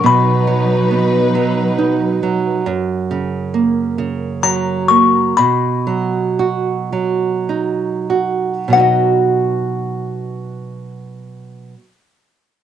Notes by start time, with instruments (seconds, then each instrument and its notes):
0.04 nylon-string guitar B2, string section F#3 D#4 B4, music box B5
0.47 nylon-string guitar F#3
0.91 nylon-string guitar B3
1.35 nylon-string guitar F#3
1.78 nylon-string guitar D#4
2.23 nylon-string guitar F#3
2.66 nylon-string guitar F#2
3.11 nylon-string guitar C#3
3.54 nylon-string guitar A#3
3.98 nylon-string guitar C#3
4.43 nylon-string guitar F#3, music box A#5
4.88 nylon-string guitar A#3, music box C#6
5.37 nylon-string guitar B2, music box B5
5.87 nylon-string guitar F#3
6.39 nylon-string guitar F#4
6.93 nylon-string guitar F#3
7.49 nylon-string guitar D#4
8.10 nylon-string guitar F#4
8.68 nylon-string guitar B2 F#3
8.72 nylon-string guitar B3 D#4, music box F#5
8.77 nylon-string guitar F#4 D#5